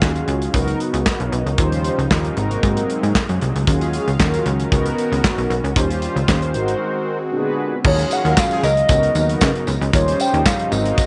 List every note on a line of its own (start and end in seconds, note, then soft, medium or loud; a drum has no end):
0.00 0.22 D#2 medium
0.00 0.53 D#3 medium
0.00 1.55 F#3 medium
0.00 0.52 G#3 medium
0.00 0.53 C#4 medium
0.00 0.54 C#4 medium
0.00 0.54 F4 medium
0.00 0.53 F#4 medium
0.00 0.54 G#4 medium
0.00 0.53 F5 medium
0.00 kick loud
0.00 snare loud
0.00 clap medium
0.16 closed hi-hat medium
0.28 0.48 C#2 loud
0.28 closed hi-hat medium
0.42 closed hi-hat medium
0.53 0.75 C#2 loud
0.53 2.35 C#3 medium
0.53 1.38 B3 medium
0.53 1.58 B3 medium
0.53 1.38 D#4 medium
0.53 3.64 D#4 medium
0.53 1.38 F#4 medium
0.53 1.57 A#4 medium
0.53 0.80 A#4 loud
0.53 kick loud
0.53 closed hi-hat medium
0.68 closed hi-hat medium
0.80 closed hi-hat medium
0.94 1.03 C#2 loud
0.94 closed hi-hat medium
1.06 1.20 D#5 medium
1.06 1.19 F#5 medium
1.06 kick loud
1.06 snare loud
1.06 clap medium
1.20 1.30 B1 medium
1.20 1.32 C#5 medium
1.20 1.32 F5 medium
1.20 closed hi-hat medium
1.32 1.43 B1 loud
1.32 1.46 B4 medium
1.32 1.45 D#5 medium
1.32 closed hi-hat medium
1.46 1.56 C#2 medium
1.46 1.71 C#5 medium
1.46 closed hi-hat soft
1.58 1.90 D#2 loud
1.58 2.36 F3 medium
1.58 2.36 G3 medium
1.58 1.99 C#4 medium
1.58 1.99 F4 medium
1.58 1.99 G4 medium
1.58 2.36 C5 medium
1.58 1.99 C5 medium
1.58 kick loud
1.58 closed hi-hat medium
1.72 closed hi-hat medium
1.84 closed hi-hat medium
1.98 2.08 C#2 medium
1.98 closed hi-hat soft
2.10 2.31 D#2 loud
2.10 2.37 C#4 medium
2.10 2.37 F4 medium
2.10 2.37 G4 medium
2.10 2.35 A#4 medium
2.10 kick loud
2.10 snare loud
2.10 clap medium
2.25 closed hi-hat medium
2.36 2.57 G#1 loud
2.36 3.66 C3 medium
2.36 4.69 F#3 medium
2.36 4.69 G#3 medium
2.36 3.66 A#3 medium
2.36 3.20 C4 medium
2.36 3.20 D#4 medium
2.36 3.20 F#4 medium
2.36 3.21 A#4 loud
2.36 closed hi-hat medium
2.51 closed hi-hat medium
2.63 2.84 G#2 loud
2.63 kick loud
2.63 closed hi-hat medium
2.77 closed hi-hat medium
2.90 closed hi-hat medium
3.03 3.13 G#2 medium
3.03 closed hi-hat medium
3.15 kick loud
3.15 snare loud
3.15 clap medium
3.29 3.39 F#2 medium
3.29 closed hi-hat medium
3.41 3.52 C2 loud
3.41 closed hi-hat medium
3.56 3.65 C#2 medium
3.56 closed hi-hat medium
3.67 3.99 D#2 loud
3.67 5.74 D#3 medium
3.67 4.08 C#4 medium
3.67 6.51 C#4 medium
3.67 4.08 F4 medium
3.67 4.08 F#4 medium
3.67 4.08 G#4 loud
3.67 4.71 F5 medium
3.67 kick loud
3.67 closed hi-hat medium
3.81 closed hi-hat medium
3.93 closed hi-hat medium
4.08 4.17 C#2 medium
4.08 closed hi-hat soft
4.19 4.40 D#2 medium
4.19 4.71 C#4 medium
4.19 4.71 F4 medium
4.19 4.70 F#4 medium
4.19 4.71 A#4 medium
4.19 kick loud
4.19 snare loud
4.19 clap medium
4.34 closed hi-hat medium
4.46 4.66 C#2 loud
4.46 closed hi-hat medium
4.60 closed hi-hat medium
4.71 4.92 C#2 loud
4.71 5.75 B3 medium
4.71 5.55 B3 medium
4.71 5.55 D#4 medium
4.71 5.75 F#4 medium
4.71 5.55 F#4 medium
4.71 5.74 A#4 medium
4.71 5.56 A#4 loud
4.71 kick loud
4.71 closed hi-hat medium
4.86 closed hi-hat medium
4.98 closed hi-hat medium
5.12 5.21 C#2 medium
5.12 closed hi-hat medium
5.24 kick loud
5.24 snare loud
5.24 clap medium
5.38 5.47 B1 medium
5.38 closed hi-hat soft
5.50 5.61 B1 loud
5.50 closed hi-hat medium
5.64 5.73 C#2 loud
5.64 closed hi-hat soft
5.76 6.07 D#2 loud
5.76 7.31 D#3 medium
5.76 6.54 G3 medium
5.76 6.16 C#4 medium
5.76 6.17 F4 medium
5.76 6.54 F4 medium
5.76 6.17 G4 medium
5.76 7.31 C5 medium
5.76 6.17 C5 medium
5.76 kick loud
5.76 closed hi-hat medium
5.90 closed hi-hat medium
6.02 closed hi-hat medium
6.16 6.25 C#2 medium
6.16 closed hi-hat soft
6.27 6.56 D#2 medium
6.27 6.54 C#4 medium
6.27 6.54 F4 medium
6.27 6.54 G4 medium
6.27 6.53 C5 medium
6.27 kick loud
6.27 snare loud
6.27 clap medium
6.42 closed hi-hat medium
6.54 6.75 G#1 medium
6.54 7.83 G#3 medium
6.54 7.83 C4 medium
6.54 7.17 D#4 medium
6.54 7.17 F#4 medium
6.54 7.83 F#4 medium
6.54 7.18 A#4 medium
6.54 7.18 C5 loud
6.54 closed hi-hat medium
6.68 closed hi-hat medium
7.32 7.74 A#2 medium
7.32 7.84 D3 medium
7.32 7.84 B3 medium
7.32 7.75 D4 medium
7.32 7.75 F#4 medium
7.32 7.75 G#4 medium
7.32 7.39 A#4 medium
7.39 7.78 B4 loud
7.84 8.05 D#2 loud
7.84 8.88 D#3 medium
7.84 9.91 F#3 medium
7.84 8.88 G#3 medium
7.84 8.64 C#4 medium
7.84 8.88 C#4 medium
7.84 8.64 F4 medium
7.84 8.65 F#4 medium
7.84 8.65 G#4 medium
7.84 8.14 C#5 loud
7.84 8.88 F5 medium
7.84 kick loud
7.84 crash loud
7.99 closed hi-hat medium
8.11 8.22 C#3 medium
8.11 8.22 A#3 medium
8.11 8.22 F#4 medium
8.11 8.41 F#5 loud
8.11 closed hi-hat medium
8.11 tambourine medium
8.25 8.34 D#2 loud
8.25 8.35 F#3 medium
8.25 8.35 F4 medium
8.25 8.35 A#4 medium
8.25 closed hi-hat soft
8.37 8.63 F5 loud
8.37 kick loud
8.37 snare loud
8.37 clap medium
8.37 tambourine medium
8.51 8.61 F3 medium
8.51 8.61 C#4 medium
8.51 8.61 G#4 medium
8.51 closed hi-hat medium
8.63 8.83 C#2 loud
8.63 8.72 F#3 medium
8.63 8.72 F4 medium
8.63 8.72 A#4 medium
8.63 9.64 D#5 loud
8.63 closed hi-hat medium
8.63 tambourine medium
8.77 closed hi-hat medium
8.88 9.10 C#2 loud
8.88 10.70 C#3 medium
8.88 9.10 B3 medium
8.88 9.92 B3 medium
8.88 9.10 D#4 medium
8.88 9.92 D#4 medium
8.88 9.10 F#4 medium
8.88 9.10 A#4 loud
8.88 9.92 A#4 medium
8.88 kick loud
8.88 closed hi-hat medium
8.88 tambourine medium
9.03 closed hi-hat medium
9.15 9.36 D#2 loud
9.15 9.75 B3 medium
9.15 9.75 D#4 medium
9.15 9.76 F#4 medium
9.15 9.76 A#4 medium
9.15 closed hi-hat medium
9.15 tambourine medium
9.29 closed hi-hat medium
9.41 9.52 C#3 loud
9.41 kick loud
9.41 snare loud
9.41 clap medium
9.41 tambourine medium
9.55 closed hi-hat medium
9.67 9.78 C#2 medium
9.67 closed hi-hat medium
9.67 tambourine soft
9.81 9.91 C#2 loud
9.81 closed hi-hat medium
9.93 10.14 D#2 loud
9.93 10.71 F3 medium
9.93 10.71 G3 medium
9.93 10.71 C#4 medium
9.93 11.06 D#4 loud
9.93 10.71 F4 medium
9.93 10.72 G4 medium
9.93 10.00 A#4 medium
9.93 10.71 C5 medium
9.93 10.22 C#5 loud
9.93 kick loud
9.93 closed hi-hat medium
9.93 tambourine soft
10.00 10.75 C5 medium
10.08 closed hi-hat medium
10.20 10.48 G5 loud
10.20 closed hi-hat medium
10.20 tambourine medium
10.34 10.43 D#2 loud
10.34 closed hi-hat medium
10.45 10.73 F5 loud
10.45 kick loud
10.45 snare loud
10.45 clap loud
10.45 tambourine loud
10.59 closed hi-hat medium
10.71 10.92 G#1 loud
10.71 11.06 C3 medium
10.71 11.06 F#3 medium
10.71 11.06 G#3 medium
10.71 11.06 A#3 medium
10.71 11.06 C4 medium
10.71 11.06 D#4 medium
10.71 11.06 F#4 medium
10.71 11.06 A#4 medium
10.71 11.06 D#5 loud
10.71 closed hi-hat medium
10.71 tambourine medium
10.85 closed hi-hat medium
10.98 kick loud
10.98 closed hi-hat medium
10.98 tambourine medium